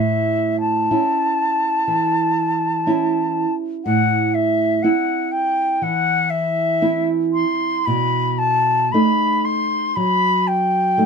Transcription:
Already playing: nylon-string guitar A2, flute E5
0.60 flute A5
0.91 nylon-string guitar C#4 E4
1.88 nylon-string guitar E3
2.87 nylon-string guitar C#4 E4
3.85 nylon-string guitar A2, flute F#5
4.34 flute E5
4.82 nylon-string guitar C4 E4, flute F#5
5.32 flute G5
5.82 nylon-string guitar E3, flute F#5
6.30 flute E5
6.82 nylon-string guitar C4 E4
7.33 flute C6
7.85 nylon-string guitar B2, flute B5
8.38 flute A5
8.92 nylon-string guitar A3 D#4, flute B5
9.44 flute C6
9.96 nylon-string guitar F#3, flute B5
10.47 flute G5
10.98 nylon-string guitar A3 D#4

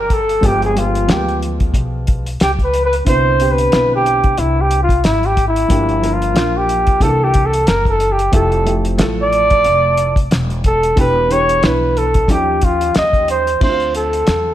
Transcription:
Already playing: upright bass G1
0.00 muted trumpet A#4
0.10 muted trumpet A4, kick, closed hi-hat
0.29 closed hi-hat
0.41 upright bass G1, upright piano F3 G#3 B3 G4, kick, closed hi-hat
0.46 muted trumpet G4
0.62 muted trumpet G#4, closed hi-hat
0.74 upright piano F3 G#3 B3 G4, closed hi-hat
0.79 muted trumpet F4
0.95 closed hi-hat
1.07 upright bass D2, upright piano F3 G#3 A#3 F4, muted trumpet G4, snare, closed hi-hat
1.16 upright piano B3
1.29 closed hi-hat
1.43 closed hi-hat
1.60 kick, closed hi-hat
1.74 upright bass B1, kick, closed hi-hat
2.07 kick, closed hi-hat
2.26 closed hi-hat
2.40 upright bass C#2, muted trumpet G4, snare, closed hi-hat
2.59 kick, closed hi-hat
2.64 muted trumpet B4
2.74 closed hi-hat
2.85 muted trumpet B4
2.93 closed hi-hat
3.05 upright bass C2, upright piano D3 B3 C4 E4, muted trumpet C5, kick, closed hi-hat
3.39 upright piano D3 B3 C4 G4, closed hi-hat
3.51 muted trumpet B4
3.58 closed hi-hat
3.72 upright bass B1, upright piano D3 B3 C4 E4, snare, closed hi-hat
3.95 muted trumpet G4
4.06 closed hi-hat
4.24 kick, closed hi-hat
4.37 upright bass C2, muted trumpet E4, closed hi-hat
4.61 muted trumpet G4
4.71 closed hi-hat
4.83 muted trumpet F4
4.89 kick, closed hi-hat
5.04 upright bass G#1, muted trumpet E4, snare, closed hi-hat
5.23 muted trumpet G4, closed hi-hat
5.37 kick, closed hi-hat
5.48 muted trumpet E4
5.56 closed hi-hat
5.68 upright bass G1, upright piano F3 A#3 D4 G4, kick, closed hi-hat
5.89 closed hi-hat
6.01 upright piano F3 A#3 D4 A#4, closed hi-hat
6.13 muted trumpet F4
6.22 closed hi-hat
6.34 upright bass A#1, upright piano F3 A#3 D4 F4, snare, closed hi-hat
6.57 muted trumpet G4
6.69 closed hi-hat
6.87 muted upright bass stroke, kick, closed hi-hat
7.00 upright bass C2, upright piano E3 A#3 D4 A4, muted trumpet A4, kick, closed hi-hat
7.24 muted trumpet G4
7.34 kick, closed hi-hat
7.46 muted trumpet A4
7.53 closed hi-hat
7.67 upright bass F#1, muted trumpet A#4, snare, closed hi-hat
7.85 muted trumpet A#4, kick, closed hi-hat
7.90 muted trumpet A4
8.00 closed hi-hat
8.12 muted trumpet G4
8.19 closed hi-hat
8.32 upright bass F1, upright piano F3 A3 E4 G4, muted trumpet A4, kick, closed hi-hat
8.52 closed hi-hat
8.65 upright piano F3 A3 E4 G4, closed hi-hat
8.85 closed hi-hat
8.98 upright bass A1, upright piano F3 A3 E4 A4, snare, closed hi-hat
9.22 muted trumpet D5
9.33 closed hi-hat
9.50 kick, closed hi-hat
9.64 upright bass F1, closed hi-hat
9.97 closed hi-hat
10.16 kick, closed hi-hat
10.31 upright bass E1, snare, closed hi-hat
10.50 closed hi-hat
10.64 muted trumpet A4, kick, closed hi-hat
10.83 closed hi-hat
10.96 upright bass E1, upright piano E3 B3 D4 G4, muted trumpet B4, kick, closed hi-hat
11.29 upright piano E3 B3 D4 G4, muted trumpet C#5, closed hi-hat
11.49 closed hi-hat
11.62 upright bass B1, upright piano E3 B3 D4 E4, muted trumpet B4, snare, closed hi-hat
11.97 muted trumpet A4, closed hi-hat
12.14 kick, closed hi-hat
12.28 upright bass D#2, upright piano F3 C#4 D#4 G4, muted trumpet G4, kick, closed hi-hat
12.61 muted trumpet F4, kick, closed hi-hat
12.81 closed hi-hat
12.95 upright bass D#2, muted trumpet D#5, snare, closed hi-hat
13.13 kick, closed hi-hat
13.28 muted trumpet C5, closed hi-hat
13.47 closed hi-hat
13.60 upright bass D2, upright piano C4 D4 E4, muted trumpet C5, kick, crash
13.69 upright piano F4
13.80 closed hi-hat
13.95 muted trumpet A4, closed hi-hat
14.13 closed hi-hat
14.27 upright bass E2, snare, closed hi-hat

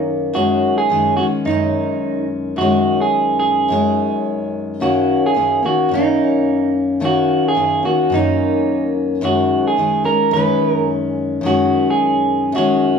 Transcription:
Already playing: steel-string acoustic guitar F#2 D#3 A#3 C#4
0.34 steel-string acoustic guitar F#2 D#3 G#3 C#4, clean electric guitar F#4
0.78 clean electric guitar G#4
0.90 steel-string acoustic guitar F#2 D#3 G#3 C#4
1.17 steel-string acoustic guitar G#3 C#4, clean electric guitar F#4
1.21 steel-string acoustic guitar D#3
1.45 steel-string acoustic guitar F#2 D#3 G#3, clean electric guitar D#4
1.51 steel-string acoustic guitar C#4
2.56 steel-string acoustic guitar F#2 D#3, clean electric guitar F#4
2.61 steel-string acoustic guitar G#3 C#4
3.01 clean electric guitar G#4
3.40 clean electric guitar G#4
3.68 steel-string acoustic guitar F#2 D#3 G#3
3.73 steel-string acoustic guitar C#4
4.80 steel-string acoustic guitar F#2 D#3 A#3 C#4, clean electric guitar F#4
5.26 clean electric guitar G#4
5.35 steel-string acoustic guitar F#2 D#3 A#3 C#4
5.63 steel-string acoustic guitar D#3 A#3 C#4, clean electric guitar F#4
5.89 steel-string acoustic guitar F#2 D#3
5.94 steel-string acoustic guitar A#3 C#4, clean electric guitar D#4
7.00 steel-string acoustic guitar F#2 D#3 A#3 C#4
7.05 clean electric guitar F#4
7.48 clean electric guitar G#4
7.55 steel-string acoustic guitar F#2 D#3 A#3 C#4
7.83 steel-string acoustic guitar D#3 A#3 C#4, clean electric guitar F#4
8.10 steel-string acoustic guitar F#2 D#3 A#3
8.14 steel-string acoustic guitar C#4, clean electric guitar D#4
9.21 steel-string acoustic guitar F#2 D#3 G#3 C#4, clean electric guitar F#4
9.68 clean electric guitar G#4
9.77 steel-string acoustic guitar F#2 D#3 G#3 C#4
10.04 steel-string acoustic guitar D#3 G#3 C#4, clean electric guitar A#4
10.31 steel-string acoustic guitar F#2 D#3, clean electric guitar B4
10.35 steel-string acoustic guitar G#3 C#4
10.70 clean electric guitar A#4
11.41 steel-string acoustic guitar F#2 D#3
11.45 steel-string acoustic guitar G#3 C#4, clean electric guitar F#4
11.90 clean electric guitar G#4
12.52 steel-string acoustic guitar F#2 D#3, clean electric guitar F#4
12.56 steel-string acoustic guitar G#3 C#4

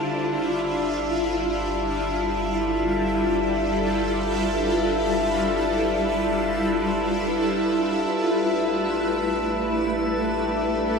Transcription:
Already playing: harmonium G3 D4, ambient pad D4 E4 F4
0.02 sub bass G1, ambient pad G3, synth texture E5
1.36 ambient pad A4
1.61 ambient pad B4
8.11 sub bass A1, ambient pad A3
8.93 ambient pad D5
9.04 ambient pad G4

